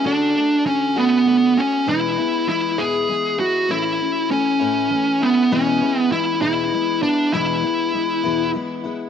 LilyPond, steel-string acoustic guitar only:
\new Staff \with { instrumentName = "Steel-string acoustic guitar" } { \time 6/8 \key e \mixolydian \tempo 4. = 66 <d a d' fis'>8 <a d' fis'>8 <d a fis'>8 <d a d' fis'>8 <d a d' fis'>8 <a fis'>8 | <e, b, e gis b e'>8 <e gis b e'>8 <e gis b e'>8 <e, b, e gis b e'>8 <e gis b e'>8 <e gis b e'>8 | <a, e a cis' e'>8 <a cis' e'>8 <e a cis' e'>8 <a, e a cis' e'>8 <e a cis' e'>8 <a cis' e'>8 | <e, b, e gis b e'>8 <e gis b e'>8 <e gis b e'>8 <e, b, e gis b e'>8 <e gis b e'>8 <e gis b e'>8 |
<e, b, e gis b e'>8 <e gis b e'>8 <e gis b e'>8 <e, b, e gis b e'>8 <e gis b e'>8 <e gis b e'>8 | }